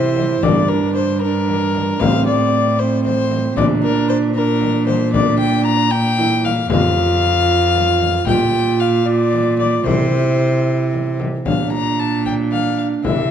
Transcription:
Already playing: C3 E4 C5
0.16 frame drum
0.43 G2 D4 D5, frame drum
0.69 A#4
0.95 C5
1.22 D4 A#4
1.48 frame drum
1.75 frame drum
2.00 A2 C4 F5, frame drum
2.26 D5
2.79 C4 C5
3.05 C5, frame drum
3.31 frame drum
3.57 A#2 D4 D5, frame drum
3.83 A#4
4.09 C5
4.35 D4 A#4
4.61 frame drum
4.87 C5, frame drum
5.13 D4 D5, frame drum
5.40 G5
5.66 A#5
5.91 G5
6.18 E4, frame drum
6.44 F5, frame drum
6.70 F2 F4 F5, frame drum
7.75 frame drum
8.00 frame drum
8.27 A#2 F4 G5, frame drum
8.80 F5
9.06 F4 D5
9.33 frame drum
9.59 D5, frame drum
9.86 C3 E4 C5, frame drum
10.93 frame drum
11.20 frame drum
11.46 A#2 D4 F5, frame drum
11.72 A#5
11.99 A5
12.26 G5, frame drum
12.52 F5, frame drum
12.78 F5
13.04 C3 E4 E5, frame drum

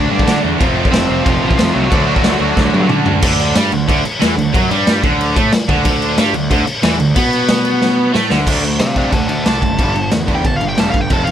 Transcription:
Already playing: D3 A3 D4 D5
0.10 G2 D3 A3 D4 F#4
0.19 kick
0.26 D3 A3 D4 F#4, snare, crash
0.43 E2 D3 A3 D4 F#4
0.59 F1 F2 C3 F3 A3 C4 F4, kick, crash
0.76 F3 A3 C4 F4
0.85 kick
0.92 F1 F3 A3 C4 F4 C5, snare, crash
1.09 F1 F3 A3 C4 F4
1.25 F1 F3 A3 C4 F4, kick, crash
1.42 A1 F3 A3 C4 F4
1.51 kick
1.57 F2 F3 A3 C4 F4, snare, crash
1.73 C2 F3 F#3 A3 C4 F4 F#4
1.89 D2 D3 A3 D4 F#4, kick, crash
2.07 D3 A3 D4 F#4
2.16 kick
2.23 D2 D3 A3 D4 F#4, snare, crash
2.39 D2 D3 A3 D4 F#4
2.56 D2 D3 A3 D4 F#4, kick, snare
2.73 G2 D3 A3 D4 F#4, high tom
2.89 D3 A3 D4 F#4, mid tom
3.05 D2 D3 A3 D4 F#4, floor tom
3.22 D2 D3, kick, crash
3.40 crash
3.55 G2 G3, snare, crash
3.72 D2 D3, crash
3.87 D2 D3, kick, crash
4.05 muted distorted electric guitar stroke, muted picked electric bass stroke, crash
4.19 E2 E3, snare, crash
4.36 D2 D3, crash
4.53 F#2 F#3, kick, crash
4.69 G2 G3, crash
4.87 snare, crash
5.03 D2 D3, kick, crash
5.21 crash
5.35 A2 A3, kick, crash
5.52 muted distorted electric guitar stroke, muted picked electric bass stroke, snare, crash
5.69 D2 D3, kick, crash
5.85 D2 D3, kick, crash
6.02 crash
6.17 G2 G3, snare, crash
6.34 D2 D3, crash
6.50 D2 D3, kick, crash
6.66 muted distorted electric guitar stroke, muted picked electric bass stroke, crash
6.82 E2 E3, snare, crash
6.98 D2 D3, crash
7.15 B2 B3, kick, crash
7.33 crash
7.48 snare, crash
7.65 crash
7.81 snare
8.13 A2 A3, snare
8.29 D2 D3, snare
8.47 D2 D3 A3 D4, kick, crash
8.63 D3 A3, crash
8.79 C3 D3 A3 D5 F5, snare, crash
8.96 D3 A3 D4 D5 F5, kick, crash
9.12 D2 D3 A3 F#5 A5, kick, crash
9.27 D2 D3 A3 F#5 A5, crash
9.45 C2 D3 A3 D4 A5, snare, crash
9.62 F#1 D3 A3, kick, crash
9.78 G1 G2 D3 G3, kick, crash
9.95 G2 D3, crash
10.11 E2 G2 D3, snare, crash
10.27 G2 D3 G3, kick, crash
10.35 G5
10.44 G1 G2 D3 A5, kick, crash
10.56 F5
10.61 G1 G2 D3, crash
10.68 G5
10.78 E1 G2 D3 G3 A5, snare, crash
10.90 F5, crash
10.94 G1 G2 D3, kick
11.01 G5
11.10 F1 F2 C3 F3 A5, kick, crash
11.24 F2 C3 F5, crash

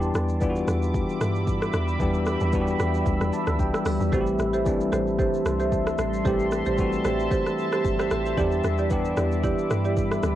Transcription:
Already playing: E2 E3 G3 B3 D4 G4 E5 B5 D6
0.02 shaker
0.14 E2, cross-stick, shaker
0.28 shaker
0.40 E3 G3 B3 D4 F4, kick, shaker
0.50 F#4
0.55 shaker
0.67 E2, cross-stick, shaker
0.82 shaker
0.94 kick, shaker
1.09 shaker
1.21 G2, cross-stick, shaker
1.35 shaker
1.47 kick, shaker
1.62 cross-stick, shaker
1.73 E2, cross-stick, shaker
1.88 shaker
1.99 E2 E3 G3 B3 D4 G4 E6, kick, shaker
2.14 shaker
2.26 cross-stick, shaker
2.41 E2, shaker
2.52 E3 G3 B3 D4 F#4, kick, shaker
2.62 G4
2.67 shaker
2.80 E2, cross-stick, shaker
2.94 shaker
3.06 D2, kick, shaker
3.21 E2, cross-stick, shaker
3.33 A5, shaker
3.47 D2, cross-stick, shaker
3.59 C2 G5, kick, shaker
3.74 cross-stick, shaker
3.86 D2 D5, cross-stick, open hi-hat, shaker
4.01 E2, shaker
4.12 A1 E3 G3 A3 C4 F#4 G4 A4 C5 A5 C6, kick, shaker
4.21 G4
4.27 shaker
4.39 A1, cross-stick, shaker
4.53 G4 A4 C5, shaker
4.64 E3 G3 A3 C4 D4, kick, shaker
4.80 shaker
4.92 A1 G4 A4 C5, cross-stick, shaker
5.07 shaker
5.19 G4 A4 C5, kick, shaker
5.34 shaker
5.45 C2, cross-stick, shaker
5.60 G4 A4 C5, shaker
5.72 kick, shaker
5.87 cross-stick, shaker
5.98 A1, cross-stick, shaker
6.13 shaker
6.24 A1 E3 G3 A3 C4 G4 A4 C5 A5, kick, shaker
6.39 shaker
6.51 cross-stick, shaker
6.66 A1 G4 A4 C5, shaker
6.77 E3 G3 A3 C4 F#4, kick, shaker
6.93 shaker
7.05 A1 G4 A4 C5, cross-stick, shaker
7.20 shaker
7.31 G4 A4 C5, kick, shaker
7.46 cross-stick, shaker
7.58 shaker
7.72 G4 A4 C5, cross-stick, shaker
7.85 G1, kick, shaker
7.99 G4 A4 C5, cross-stick, shaker
8.11 A1 C5 E5, cross-stick, shaker
8.26 A4 C5, shaker
8.36 E2 E3 G3 B3 D4 E4 G4 D5 B5 D6, kick, shaker
8.52 shaker
8.64 E2, cross-stick, shaker
8.78 E4 G4 D5, shaker
8.90 E3 G3 B3 D4 G4, kick, shaker
9.05 shaker
9.17 E2 E4 G4 D5, cross-stick, shaker
9.32 shaker
9.43 E4 G4 D5, kick, shaker
9.58 shaker
9.70 G2, cross-stick, shaker
9.84 E4 G4 D5, shaker
9.97 kick, shaker
10.11 cross-stick, shaker
10.23 D2, cross-stick, shaker

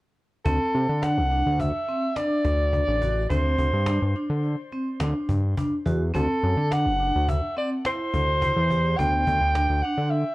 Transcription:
0.45 D2 C4 A4, cajon bass
0.74 C3, cajon slap
0.89 D3
1.03 D4 F#5, cajon slap
1.17 C2
1.31 D4, cajon slap
1.46 D2
1.60 E5, cajon bass
1.88 C4, cajon slap
2.16 D4 D5, cajon slap
2.45 D2, cajon bass, cajon slap
2.73 D4, cajon bass
2.88 A1
3.02 F#4, cajon bass
3.29 D2 C4 C5, cajon bass
3.58 D2, cajon bass
3.73 G2
3.86 D4, cajon slap
4.02 G2
4.15 D4, cajon slap
4.30 D3
4.44 cajon slap
4.72 C4, cajon slap
5.00 D2 D4, cajon slap
5.29 G2, cajon bass
5.57 D4, cajon bass
5.86 E2 F#4, cajon bass
6.14 D2 C4 A4, cajon bass
6.43 F#2, cajon slap
6.57 D3
6.71 D4 F#5, cajon slap
6.86 F#1
7.00 D4, cajon slap
7.15 D2
7.29 E5, cajon bass
7.57 C4 D5, cajon slap
7.85 E4 C5, cajon slap
8.14 D2, cajon bass
8.41 E4, cajon bass
8.56 E2
8.70 G4, cajon bass, cajon slap
8.98 D2 B3 G5, cajon bass
9.27 D2, cajon bass
9.41 D2
9.55 D4, cajon slap
9.69 D2
9.82 D4 F#5, cajon slap
9.98 D3
10.10 E5, cajon slap

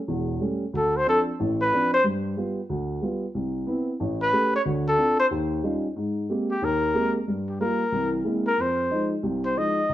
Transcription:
0.08 E1 E2
0.41 G3 A3 C#4
0.74 D2 A4
0.97 C5
1.06 F3 C4 D4 A4
1.40 A1 A2
1.62 B4
1.72 F3 C4 D4
1.94 C5
2.04 G2
2.37 G3 B3 F4
2.70 D2
3.02 G3 B3 F4
3.35 C2
3.67 B3 C4 E4
4.00 A1
4.22 B4
4.32 A3 C#4 G4
4.56 C#5
4.65 D2 D3
4.89 A4
4.98 C4 D4 F4
5.20 C5
5.31 D#2
5.63 G3 C#4 D#4 F4
5.96 G#2
6.29 G#3 A#3 C4 G4
6.51 G4
6.62 D#2 A#4
6.94 G#3 A#3 C4 G4
7.28 G2
7.49 G4
7.60 G3 A#3 F4 A#4
7.92 C2 E3
8.24 G#3 A#3 C4 E4
8.48 A#4
8.58 F2 C5
8.91 F3 G#3 D#4
9.23 C2 C3
9.45 C5
9.56 F3 G#3 D#4 D#5
9.89 C#2

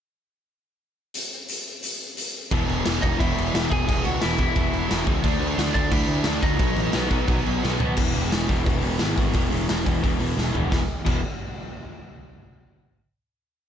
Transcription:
1.14 closed hi-hat
1.48 closed hi-hat
1.83 closed hi-hat
2.17 closed hi-hat
2.51 E1 E2 B2 E3, kick, crash
2.69 E1, crash
2.85 E1 E2 B2 E3, snare, crash
3.02 E1 E2 B2 E3 D#4 D#5, kick, crash
3.19 E1 E2 B2 E3 E4 E5, kick, crash
3.38 E1, crash
3.54 E1 E2 B2 E3, snare, crash
3.71 E1 E2 B2 E3 G#4 G#5, kick, crash
3.87 E1 E2 B2 E3 G#4 G#5, kick, crash
4.04 C#2 F#4 F#5, crash
4.22 E1 E2 B2 E3 E4 E5, snare, crash
4.38 E2 B2 E3, kick, crash
4.56 E1 E2 B2 E3, kick, crash
4.73 E1, crash
4.90 E1 E2 B2 E3, snare, crash
5.07 C#2 E2 B2 E3, kick, crash
5.23 D2 D3 A3 D4, kick, crash
5.40 D2, crash
5.57 D2 D3 A3 D4, snare, crash
5.74 D2 D3 A3 D4 D5, kick, crash
5.91 D2 D3 A3 D4 E4 E5, kick, crash
6.07 D2, crash
6.24 D2 D3 A3 D4, snare, crash
6.42 D2 D3 A3 D4 D#4 D#5, kick, crash
6.59 B1 B2 F#3 B3, kick, crash
6.76 A1, crash
6.93 B1 B2 F#3 B3, snare, crash
7.10 B2 F#3 B3, kick, crash
7.28 B1 B2 F#3 B3, kick, crash
7.46 B1, crash
7.63 B1 B2 F#3 B3, snare
7.80 B2 F#3 B3, floor tom
7.97 E1 E2 B2 E3, kick, crash
8.15 E1 E2 B2 E3, open hi-hat
8.32 E1 E2 B2 E3, snare, open hi-hat
8.49 E1 E2 B2 E3, kick, open hi-hat
8.66 E1 E2 B2 E3, kick, open hi-hat
8.82 E1 E2 B2 E3, open hi-hat
8.99 G#1 E2 B2 E3, snare, open hi-hat
9.18 G#1 E2 B2 E3, kick, open hi-hat
9.33 E1 E2 B2 E3, kick, open hi-hat
9.52 E1 E2 B2 E3, open hi-hat
9.69 E1 E2 B2 E3, snare, open hi-hat
9.85 E1 E2 B2 E3, kick, open hi-hat
10.02 E1 E2 B2 E3, kick, open hi-hat
10.19 E1 E2 B2 E3, open hi-hat
10.37 E1 E2 B2 E3, snare
10.53 E1 E2 B2 E3, floor tom
10.69 E1 E2 B2 E3, kick, snare
11.05 E1 E2 B2 E3, kick, crash

